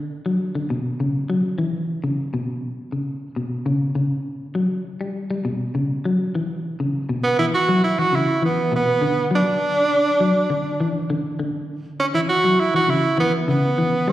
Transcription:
0.26 clean electric guitar F#3
0.55 clean electric guitar D3
0.70 clean electric guitar B2
1.00 clean electric guitar C#3
1.30 clean electric guitar F#3
1.58 clean electric guitar E3
2.04 clean electric guitar C#3
2.34 clean electric guitar B2
2.92 clean electric guitar C#3
3.36 clean electric guitar B2
3.66 clean electric guitar C#3
3.95 clean electric guitar C#3
4.55 clean electric guitar F#3
5.01 clean electric guitar G3
5.31 clean electric guitar G3
5.45 clean electric guitar B2
5.75 clean electric guitar C#3
6.05 clean electric guitar F#3
6.35 clean electric guitar E3
6.80 clean electric guitar C#3
7.09 clean electric guitar B2
7.24 tenor saxophone B3
7.39 clean electric guitar E3, tenor saxophone E4
7.54 tenor saxophone F#4
7.69 clean electric guitar F#3
7.84 tenor saxophone E4
7.99 clean electric guitar E3, tenor saxophone F#4
8.13 clean electric guitar C#3, tenor saxophone E4
8.42 clean electric guitar E3, tenor saxophone B3
8.72 clean electric guitar B2, tenor saxophone B3
9.02 clean electric guitar D3
9.31 clean electric guitar F#3
9.35 tenor saxophone D4
10.20 clean electric guitar F#3
10.50 clean electric guitar D3
10.80 clean electric guitar E3
11.10 clean electric guitar D3
11.39 clean electric guitar D3
12.00 tenor saxophone C#4
12.14 clean electric guitar E3, tenor saxophone E4
12.29 tenor saxophone F#4
12.44 clean electric guitar F#3
12.60 tenor saxophone E4
12.74 clean electric guitar E3, tenor saxophone F#4
12.88 clean electric guitar C#3, tenor saxophone E4
13.18 clean electric guitar E3, tenor saxophone B3
13.48 clean electric guitar C#3, tenor saxophone B3
13.78 clean electric guitar E3
14.08 clean electric guitar G3, tenor saxophone C#4

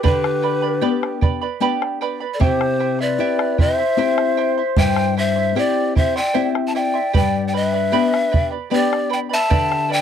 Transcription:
0.03 nylon-string guitar D3, charango G4 B4 D5 G5 B5, quena G4, pan flute B4, bombo rim, bombo low
0.24 bombo rim
0.42 charango B4 D5 G5 B5, bombo rim
0.62 charango B4 D5 B5
0.81 nylon-string guitar B3 D4 G4, charango G4 B4 D5 G5 B5
1.03 bombo rim
1.21 charango B4 D5 G5 B5, bombo low
1.41 charango B4 D5 B5
1.60 nylon-string guitar B3 D4 G4, charango G4 B4 D5 G5 B5
1.82 bombo rim
2.01 charango B4 D5 G5 B5, bombo rim
2.20 charango B4 D5 B5
2.34 quena A4, pan flute D5
2.40 nylon-string guitar C3, charango E4 C5 E5 G5 C6, quena G4, pan flute C5, bombo rim, bombo low
2.61 bombo rim
2.79 charango E4 E5 G5 C6, bombo rim
2.99 charango E4 E5 C6, quena B4, pan flute D5
3.18 nylon-string guitar C4 E4 G4, charango E4 E5 G5
3.39 bombo rim
3.58 charango E4 E5 G5 C6, quena C5, pan flute E5, bombo low
3.78 charango E4 E5 C6
3.97 nylon-string guitar C4 E4 G4, charango E4 C5 E5 G5 C6
4.18 bombo rim
4.37 charango E4 E5 G5 C6, bombo rim
4.58 charango E4 E5 C6
4.76 nylon-string guitar G2, charango E4 C5 E5 G5 C6, quena C5, pan flute G5, bombo rim, bombo low
4.96 bombo rim
5.17 charango E4 E5 G5 C6, quena C5, pan flute E5, bombo rim
5.36 charango E4 E5 C6
5.55 nylon-string guitar C4 E4 G4, charango E4 C5 E5 G5 C6, quena G4, pan flute D5, bombo rim
5.95 charango E4 E5 G5 C6, quena C5, pan flute E5, bombo low
6.16 charango E4 E5 C6, quena D5, pan flute G5
6.34 nylon-string guitar C4 E4 G4, charango E4 C5 E5 G5 C6, bombo rim
6.55 bombo rim
6.67 quena E5, pan flute A5
6.75 charango E4 E5 G5 C6, quena D5, pan flute G5
6.94 charango E4 E5 C6
7.13 nylon-string guitar G2, charango G4 B4 D5 G5 B5, quena D5, pan flute G5, bombo rim, bombo low
7.45 quena D5, pan flute G5
7.53 charango B4 D5 G5 B5, quena B4, pan flute D#5, bombo rim
7.67 pan flute E5
7.73 charango B4 D5 B5
7.92 nylon-string guitar B3 D4 G4, charango G4 B4 D5 G5 B5
8.14 bombo rim
8.32 charango B4 D5 G5 B5, bombo low
8.51 charango B4 D5 B5
8.70 nylon-string guitar B3 D4 G4, charango G4 B4 D5 G5 B5, quena G4
8.74 pan flute D5
8.93 bombo rim
9.10 charango B4 D5 G5 B5, quena D5, pan flute G5, bombo rim
9.29 charango B4 D5 B5, quena E5
9.34 pan flute A5
9.49 nylon-string guitar D3, charango G4 B4 D5 G5 B5, bombo rim, bombo low
9.72 bombo rim
9.88 charango B4 D5 G5 B5, quena D5, bombo rim
9.93 pan flute G5

